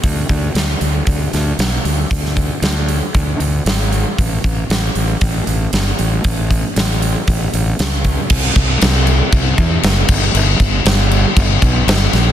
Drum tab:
CC |----------------|----------------|----------------|----------------|
HH |o-o-o-o-o-o-o-o-|o-o-o-o-o-o-o-o-|o-o-o-o-o-o-o-o-|o-o-o-o-o-o-o-o-|
SD |----o-----o-o---|-o--o-------o---|----o-------o---|----o-------o---|
BD |o-o-----o-------|o-o-----o-------|o-o-----o-------|o-o-----o-----o-|

CC |x-x-x-x-x-x-x-x-|x-x-x-x-x-x-x-x-|
HH |----------------|----------------|
SD |----o-------o---|----o-------o-o-|
BD |o-o-----o-o---o-|--o-----o-o-----|